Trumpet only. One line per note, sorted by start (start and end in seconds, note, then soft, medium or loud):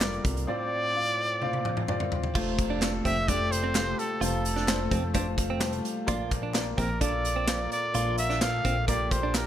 0.00 0.25 D5 medium
0.48 1.84 D5 loud
3.06 3.30 E5 loud
3.28 3.53 D5 medium
3.52 4.00 C5 medium
3.99 4.22 A4 medium
4.23 5.12 A4 medium
6.79 7.01 A#4 medium
7.03 7.68 D5 medium
7.72 8.16 D5 medium
8.18 8.44 E5 medium
8.42 8.87 F5 medium
8.88 9.13 D5 medium
9.12 9.35 C5 medium
9.36 9.47 A#4 medium